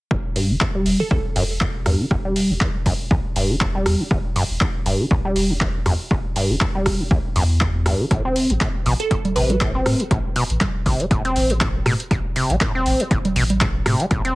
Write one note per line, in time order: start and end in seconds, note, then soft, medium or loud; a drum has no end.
0.11 0.20 E1 loud
0.11 0.16 E2 medium
0.11 kick loud
0.11 cross-stick medium
0.36 0.51 G2 medium
0.36 open hi-hat loud
0.50 0.57 E1 medium
0.50 0.56 E3 loud
0.61 0.66 E2 loud
0.61 kick loud
0.61 clap loud
0.75 1.01 G3 medium
0.86 0.95 E1 loud
0.86 open hi-hat medium
1.00 1.04 A2 loud
1.00 1.07 A4 medium
1.11 1.20 B1 loud
1.11 1.19 E2 medium
1.11 1.20 A4 medium
1.11 kick loud
1.36 1.80 E1 loud
1.36 1.44 F#2 medium
1.36 open hi-hat loud
1.61 1.66 E2 medium
1.61 kick loud
1.61 clap loud
1.86 1.95 E2 medium
1.86 2.01 G2 medium
1.86 cross-stick medium
1.86 open hi-hat medium
2.00 2.06 E3 loud
2.11 2.20 E1 loud
2.11 2.15 E2 loud
2.11 kick loud
2.11 cross-stick medium
2.25 2.52 G3 medium
2.36 open hi-hat loud
2.50 2.57 E1 medium
2.50 2.54 A2 loud
2.61 2.69 E2 medium
2.61 kick loud
2.61 clap loud
2.86 2.95 E1 loud
2.86 2.94 F#2 loud
2.86 kick medium
2.86 open hi-hat medium
3.11 3.20 B1 medium
3.11 3.16 E2 loud
3.11 kick loud
3.36 3.80 E1 loud
3.36 3.51 G2 medium
3.36 open hi-hat loud
3.50 3.56 E3 loud
3.61 3.66 E2 loud
3.61 kick loud
3.61 clap loud
3.75 4.01 G3 medium
3.86 3.95 E2 medium
3.86 cross-stick medium
3.86 open hi-hat medium
4.00 4.04 A2 medium
4.11 4.20 E1 loud
4.11 4.19 E2 medium
4.11 kick loud
4.11 cross-stick medium
4.36 4.44 F#2 loud
4.36 open hi-hat loud
4.50 4.57 E1 medium
4.61 4.66 E2 loud
4.61 kick loud
4.61 clap loud
4.86 4.95 E1 loud
4.86 5.01 G2 medium
4.86 open hi-hat medium
5.00 5.06 E3 loud
5.11 5.20 B1 loud
5.11 5.15 E2 loud
5.11 kick loud
5.25 5.51 G3 medium
5.36 5.80 E1 loud
5.36 open hi-hat loud
5.50 5.54 A2 loud
5.61 5.69 E2 medium
5.61 kick loud
5.61 clap loud
5.86 5.95 E2 medium
5.86 5.94 F#2 loud
5.86 cross-stick medium
5.86 open hi-hat medium
6.11 6.20 E1 loud
6.11 6.16 E2 loud
6.11 kick loud
6.11 cross-stick medium
6.36 6.51 G2 medium
6.36 open hi-hat loud
6.50 6.57 E1 medium
6.50 6.56 E3 loud
6.61 6.66 E2 loud
6.61 kick loud
6.61 clap loud
6.75 7.01 G3 medium
6.86 6.95 E1 loud
6.86 kick medium
6.86 cross-stick medium
6.86 open hi-hat medium
7.00 7.04 A2 loud
7.11 7.20 B1 loud
7.11 7.19 E2 medium
7.11 kick loud
7.36 7.92 E2 medium
7.36 7.44 F#2 loud
7.36 open hi-hat loud
7.61 7.66 E2 loud
7.61 kick loud
7.61 clap loud
7.86 8.01 G2 medium
7.86 cross-stick medium
7.86 open hi-hat medium
8.00 8.06 E3 loud
8.11 8.20 A1 loud
8.11 8.23 A2 medium
8.11 kick loud
8.11 cross-stick medium
8.11 closed hi-hat medium
8.25 8.52 C4 medium
8.36 open hi-hat loud
8.50 8.57 A1 medium
8.50 8.54 D3 loud
8.50 closed hi-hat soft
8.61 8.69 A2 medium
8.61 kick loud
8.61 clap loud
8.61 closed hi-hat medium
8.86 8.95 A1 loud
8.86 8.94 B2 loud
8.86 open hi-hat medium
9.00 9.07 A4 medium
9.00 closed hi-hat soft
9.11 9.20 E1 loud
9.11 9.16 A2 medium
9.11 9.20 A4 medium
9.11 kick loud
9.11 closed hi-hat medium
9.25 closed hi-hat soft
9.25 low conga medium
9.36 9.80 A1 loud
9.36 9.51 C3 medium
9.36 10.06 B4 medium
9.36 open hi-hat loud
9.50 9.56 A3 loud
9.50 closed hi-hat soft
9.50 low conga medium
9.61 9.72 A2 medium
9.61 kick loud
9.61 clap loud
9.61 closed hi-hat medium
9.75 10.02 C4 medium
9.86 9.95 A2 medium
9.86 cross-stick medium
9.86 open hi-hat medium
10.00 10.04 D3 loud
10.00 closed hi-hat soft
10.11 10.20 A1 loud
10.11 10.19 A2 medium
10.11 kick loud
10.11 cross-stick medium
10.11 closed hi-hat medium
10.36 10.44 B2 medium
10.36 open hi-hat loud
10.50 10.57 A1 medium
10.50 closed hi-hat soft
10.61 10.66 A2 loud
10.61 kick loud
10.61 clap loud
10.61 closed hi-hat medium
10.61 low conga medium
10.86 10.95 A1 loud
10.86 11.01 C3 medium
10.86 kick medium
10.86 open hi-hat medium
11.00 11.06 A3 loud
11.00 closed hi-hat soft
11.11 11.20 E1 medium
11.11 11.23 A2 medium
11.11 kick loud
11.11 closed hi-hat medium
11.25 11.52 C4 medium
11.25 closed hi-hat soft
11.36 11.80 A1 loud
11.36 open hi-hat loud
11.50 11.54 D3 loud
11.50 closed hi-hat soft
11.61 11.69 A2 medium
11.61 kick loud
11.61 clap loud
11.61 closed hi-hat medium
11.86 11.95 A2 medium
11.86 11.94 B2 loud
11.86 cross-stick medium
11.86 open hi-hat medium
12.00 closed hi-hat soft
12.11 12.20 A1 loud
12.11 12.16 A2 loud
12.11 kick loud
12.11 cross-stick medium
12.11 closed hi-hat medium
12.36 12.52 C3 medium
12.36 open hi-hat loud
12.50 12.57 A1 medium
12.50 12.56 A3 loud
12.50 closed hi-hat soft
12.61 12.73 A2 medium
12.61 kick loud
12.61 clap loud
12.61 closed hi-hat medium
12.75 13.02 C4 medium
12.86 12.95 A1 loud
12.86 open hi-hat medium
13.00 13.04 D3 loud
13.00 closed hi-hat soft
13.11 13.20 E1 loud
13.11 13.19 A2 medium
13.11 kick loud
13.11 closed hi-hat medium
13.25 closed hi-hat soft
13.25 low conga medium
13.36 13.80 A1 loud
13.36 13.44 B2 loud
13.36 open hi-hat medium
13.50 closed hi-hat medium
13.50 low conga medium
13.61 13.66 A2 loud
13.61 kick loud
13.61 clap loud
13.61 closed hi-hat medium
13.86 13.95 A2 medium
13.86 14.01 C3 medium
13.86 cross-stick medium
13.86 open hi-hat medium
14.00 14.06 A3 loud
14.00 closed hi-hat medium
14.11 14.20 A1 loud
14.11 14.22 A2 medium
14.11 kick loud
14.11 cross-stick medium
14.11 closed hi-hat medium
14.25 14.35 C4 medium
14.25 closed hi-hat soft